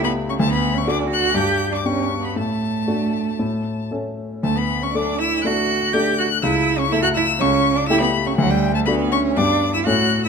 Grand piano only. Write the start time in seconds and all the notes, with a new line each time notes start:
Already playing: C#2 A3 E4 G4
0.39 D2
0.87 A3 D4 F#4
1.34 G2
1.85 B3 D4 G4
2.36 A2
2.87 A3 D4 F#4
3.39 A2
3.91 A3 C#4 A4
4.43 D2
4.95 A3 D4 A4
5.44 A3 D4 A4
5.93 A3 D4 A4
6.43 C#2
6.92 A3 E4 A4
7.41 C#2
7.90 A3 E4 G4
8.38 D2
8.87 A3 D4 F#4
9.37 G2 B3 D4 G4
9.86 A2 A3 C#4 E4